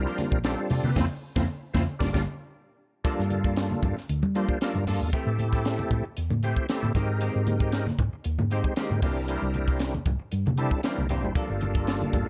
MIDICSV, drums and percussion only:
0, 0, Header, 1, 2, 480
1, 0, Start_track
1, 0, Tempo, 519481
1, 896, Time_signature, 4, 2, 24, 8
1, 11363, End_track
2, 0, Start_track
2, 0, Title_t, "Drums"
2, 166, Note_on_c, 9, 42, 55
2, 173, Note_on_c, 9, 63, 61
2, 174, Note_on_c, 9, 38, 34
2, 259, Note_off_c, 9, 42, 0
2, 265, Note_off_c, 9, 63, 0
2, 266, Note_off_c, 9, 38, 0
2, 295, Note_on_c, 9, 36, 74
2, 387, Note_off_c, 9, 36, 0
2, 405, Note_on_c, 9, 42, 68
2, 412, Note_on_c, 9, 38, 100
2, 497, Note_off_c, 9, 42, 0
2, 505, Note_off_c, 9, 38, 0
2, 646, Note_on_c, 9, 46, 72
2, 655, Note_on_c, 9, 64, 64
2, 738, Note_off_c, 9, 46, 0
2, 748, Note_off_c, 9, 64, 0
2, 780, Note_on_c, 9, 63, 72
2, 872, Note_off_c, 9, 63, 0
2, 889, Note_on_c, 9, 36, 87
2, 896, Note_on_c, 9, 38, 88
2, 898, Note_on_c, 9, 63, 98
2, 982, Note_off_c, 9, 36, 0
2, 988, Note_off_c, 9, 38, 0
2, 990, Note_off_c, 9, 63, 0
2, 1258, Note_on_c, 9, 36, 93
2, 1261, Note_on_c, 9, 63, 95
2, 1263, Note_on_c, 9, 38, 95
2, 1350, Note_off_c, 9, 36, 0
2, 1354, Note_off_c, 9, 63, 0
2, 1356, Note_off_c, 9, 38, 0
2, 1613, Note_on_c, 9, 36, 84
2, 1618, Note_on_c, 9, 63, 100
2, 1620, Note_on_c, 9, 38, 96
2, 1705, Note_off_c, 9, 36, 0
2, 1710, Note_off_c, 9, 63, 0
2, 1713, Note_off_c, 9, 38, 0
2, 1853, Note_on_c, 9, 36, 91
2, 1855, Note_on_c, 9, 63, 102
2, 1860, Note_on_c, 9, 38, 100
2, 1945, Note_off_c, 9, 36, 0
2, 1948, Note_off_c, 9, 63, 0
2, 1952, Note_off_c, 9, 38, 0
2, 1980, Note_on_c, 9, 36, 94
2, 1984, Note_on_c, 9, 63, 102
2, 1987, Note_on_c, 9, 38, 87
2, 2072, Note_off_c, 9, 36, 0
2, 2077, Note_off_c, 9, 63, 0
2, 2079, Note_off_c, 9, 38, 0
2, 2815, Note_on_c, 9, 42, 81
2, 2816, Note_on_c, 9, 36, 107
2, 2907, Note_off_c, 9, 42, 0
2, 2908, Note_off_c, 9, 36, 0
2, 2950, Note_on_c, 9, 38, 33
2, 3043, Note_off_c, 9, 38, 0
2, 3054, Note_on_c, 9, 42, 51
2, 3062, Note_on_c, 9, 63, 57
2, 3146, Note_off_c, 9, 42, 0
2, 3154, Note_off_c, 9, 63, 0
2, 3182, Note_on_c, 9, 36, 78
2, 3274, Note_off_c, 9, 36, 0
2, 3294, Note_on_c, 9, 42, 67
2, 3302, Note_on_c, 9, 38, 103
2, 3387, Note_off_c, 9, 42, 0
2, 3394, Note_off_c, 9, 38, 0
2, 3427, Note_on_c, 9, 63, 62
2, 3520, Note_off_c, 9, 63, 0
2, 3534, Note_on_c, 9, 42, 54
2, 3536, Note_on_c, 9, 36, 76
2, 3543, Note_on_c, 9, 64, 65
2, 3627, Note_off_c, 9, 42, 0
2, 3628, Note_off_c, 9, 36, 0
2, 3635, Note_off_c, 9, 64, 0
2, 3672, Note_on_c, 9, 38, 29
2, 3764, Note_off_c, 9, 38, 0
2, 3783, Note_on_c, 9, 42, 71
2, 3876, Note_off_c, 9, 42, 0
2, 3908, Note_on_c, 9, 63, 61
2, 3908, Note_on_c, 9, 64, 56
2, 4000, Note_off_c, 9, 63, 0
2, 4000, Note_off_c, 9, 64, 0
2, 4023, Note_on_c, 9, 42, 57
2, 4115, Note_off_c, 9, 42, 0
2, 4145, Note_on_c, 9, 36, 65
2, 4237, Note_off_c, 9, 36, 0
2, 4261, Note_on_c, 9, 42, 67
2, 4268, Note_on_c, 9, 38, 93
2, 4353, Note_off_c, 9, 42, 0
2, 4360, Note_off_c, 9, 38, 0
2, 4388, Note_on_c, 9, 63, 55
2, 4480, Note_off_c, 9, 63, 0
2, 4501, Note_on_c, 9, 46, 76
2, 4501, Note_on_c, 9, 64, 57
2, 4593, Note_off_c, 9, 64, 0
2, 4594, Note_off_c, 9, 46, 0
2, 4741, Note_on_c, 9, 36, 103
2, 4742, Note_on_c, 9, 42, 81
2, 4833, Note_off_c, 9, 36, 0
2, 4834, Note_off_c, 9, 42, 0
2, 4978, Note_on_c, 9, 63, 55
2, 4982, Note_on_c, 9, 42, 53
2, 5070, Note_off_c, 9, 63, 0
2, 5074, Note_off_c, 9, 42, 0
2, 5107, Note_on_c, 9, 36, 70
2, 5114, Note_on_c, 9, 38, 30
2, 5199, Note_off_c, 9, 36, 0
2, 5206, Note_off_c, 9, 38, 0
2, 5222, Note_on_c, 9, 42, 75
2, 5229, Note_on_c, 9, 38, 98
2, 5314, Note_off_c, 9, 42, 0
2, 5322, Note_off_c, 9, 38, 0
2, 5351, Note_on_c, 9, 63, 64
2, 5443, Note_off_c, 9, 63, 0
2, 5458, Note_on_c, 9, 64, 64
2, 5459, Note_on_c, 9, 36, 74
2, 5460, Note_on_c, 9, 42, 58
2, 5551, Note_off_c, 9, 64, 0
2, 5552, Note_off_c, 9, 36, 0
2, 5553, Note_off_c, 9, 42, 0
2, 5698, Note_on_c, 9, 42, 84
2, 5790, Note_off_c, 9, 42, 0
2, 5825, Note_on_c, 9, 63, 63
2, 5825, Note_on_c, 9, 64, 56
2, 5918, Note_off_c, 9, 63, 0
2, 5918, Note_off_c, 9, 64, 0
2, 5939, Note_on_c, 9, 42, 54
2, 6031, Note_off_c, 9, 42, 0
2, 6066, Note_on_c, 9, 36, 68
2, 6158, Note_off_c, 9, 36, 0
2, 6179, Note_on_c, 9, 42, 76
2, 6187, Note_on_c, 9, 38, 96
2, 6272, Note_off_c, 9, 42, 0
2, 6279, Note_off_c, 9, 38, 0
2, 6310, Note_on_c, 9, 63, 59
2, 6402, Note_off_c, 9, 63, 0
2, 6421, Note_on_c, 9, 36, 93
2, 6423, Note_on_c, 9, 42, 60
2, 6427, Note_on_c, 9, 64, 62
2, 6513, Note_off_c, 9, 36, 0
2, 6516, Note_off_c, 9, 42, 0
2, 6519, Note_off_c, 9, 64, 0
2, 6661, Note_on_c, 9, 42, 74
2, 6753, Note_off_c, 9, 42, 0
2, 6901, Note_on_c, 9, 42, 58
2, 6903, Note_on_c, 9, 63, 60
2, 6993, Note_off_c, 9, 42, 0
2, 6995, Note_off_c, 9, 63, 0
2, 7025, Note_on_c, 9, 36, 77
2, 7118, Note_off_c, 9, 36, 0
2, 7136, Note_on_c, 9, 42, 75
2, 7144, Note_on_c, 9, 38, 93
2, 7229, Note_off_c, 9, 42, 0
2, 7236, Note_off_c, 9, 38, 0
2, 7270, Note_on_c, 9, 63, 66
2, 7272, Note_on_c, 9, 38, 29
2, 7363, Note_off_c, 9, 63, 0
2, 7365, Note_off_c, 9, 38, 0
2, 7377, Note_on_c, 9, 42, 49
2, 7379, Note_on_c, 9, 36, 78
2, 7386, Note_on_c, 9, 64, 69
2, 7470, Note_off_c, 9, 42, 0
2, 7472, Note_off_c, 9, 36, 0
2, 7478, Note_off_c, 9, 64, 0
2, 7617, Note_on_c, 9, 42, 82
2, 7709, Note_off_c, 9, 42, 0
2, 7749, Note_on_c, 9, 63, 69
2, 7749, Note_on_c, 9, 64, 66
2, 7841, Note_off_c, 9, 63, 0
2, 7841, Note_off_c, 9, 64, 0
2, 7862, Note_on_c, 9, 42, 54
2, 7954, Note_off_c, 9, 42, 0
2, 7985, Note_on_c, 9, 36, 73
2, 8078, Note_off_c, 9, 36, 0
2, 8097, Note_on_c, 9, 42, 66
2, 8105, Note_on_c, 9, 38, 93
2, 8190, Note_off_c, 9, 42, 0
2, 8197, Note_off_c, 9, 38, 0
2, 8228, Note_on_c, 9, 63, 59
2, 8320, Note_off_c, 9, 63, 0
2, 8338, Note_on_c, 9, 36, 101
2, 8339, Note_on_c, 9, 46, 75
2, 8341, Note_on_c, 9, 64, 69
2, 8430, Note_off_c, 9, 36, 0
2, 8432, Note_off_c, 9, 46, 0
2, 8434, Note_off_c, 9, 64, 0
2, 8575, Note_on_c, 9, 42, 77
2, 8668, Note_off_c, 9, 42, 0
2, 8815, Note_on_c, 9, 42, 53
2, 8825, Note_on_c, 9, 63, 65
2, 8907, Note_off_c, 9, 42, 0
2, 8918, Note_off_c, 9, 63, 0
2, 8941, Note_on_c, 9, 36, 68
2, 9034, Note_off_c, 9, 36, 0
2, 9050, Note_on_c, 9, 42, 73
2, 9057, Note_on_c, 9, 38, 97
2, 9142, Note_off_c, 9, 42, 0
2, 9149, Note_off_c, 9, 38, 0
2, 9190, Note_on_c, 9, 63, 74
2, 9283, Note_off_c, 9, 63, 0
2, 9291, Note_on_c, 9, 42, 56
2, 9293, Note_on_c, 9, 36, 74
2, 9305, Note_on_c, 9, 64, 68
2, 9383, Note_off_c, 9, 42, 0
2, 9386, Note_off_c, 9, 36, 0
2, 9398, Note_off_c, 9, 64, 0
2, 9531, Note_on_c, 9, 42, 75
2, 9624, Note_off_c, 9, 42, 0
2, 9673, Note_on_c, 9, 63, 73
2, 9673, Note_on_c, 9, 64, 67
2, 9765, Note_off_c, 9, 63, 0
2, 9765, Note_off_c, 9, 64, 0
2, 9771, Note_on_c, 9, 42, 59
2, 9863, Note_off_c, 9, 42, 0
2, 9898, Note_on_c, 9, 36, 72
2, 9990, Note_off_c, 9, 36, 0
2, 10010, Note_on_c, 9, 42, 74
2, 10017, Note_on_c, 9, 38, 94
2, 10102, Note_off_c, 9, 42, 0
2, 10110, Note_off_c, 9, 38, 0
2, 10149, Note_on_c, 9, 63, 47
2, 10242, Note_off_c, 9, 63, 0
2, 10249, Note_on_c, 9, 42, 63
2, 10259, Note_on_c, 9, 64, 56
2, 10341, Note_off_c, 9, 42, 0
2, 10352, Note_off_c, 9, 64, 0
2, 10390, Note_on_c, 9, 64, 68
2, 10483, Note_off_c, 9, 64, 0
2, 10491, Note_on_c, 9, 36, 112
2, 10492, Note_on_c, 9, 42, 83
2, 10584, Note_off_c, 9, 36, 0
2, 10585, Note_off_c, 9, 42, 0
2, 10726, Note_on_c, 9, 42, 59
2, 10740, Note_on_c, 9, 63, 70
2, 10819, Note_off_c, 9, 42, 0
2, 10833, Note_off_c, 9, 63, 0
2, 10857, Note_on_c, 9, 36, 74
2, 10950, Note_off_c, 9, 36, 0
2, 10970, Note_on_c, 9, 42, 72
2, 10978, Note_on_c, 9, 38, 104
2, 11063, Note_off_c, 9, 42, 0
2, 11070, Note_off_c, 9, 38, 0
2, 11104, Note_on_c, 9, 63, 78
2, 11196, Note_off_c, 9, 63, 0
2, 11211, Note_on_c, 9, 36, 78
2, 11214, Note_on_c, 9, 42, 56
2, 11218, Note_on_c, 9, 64, 72
2, 11303, Note_off_c, 9, 36, 0
2, 11307, Note_off_c, 9, 42, 0
2, 11310, Note_off_c, 9, 64, 0
2, 11363, End_track
0, 0, End_of_file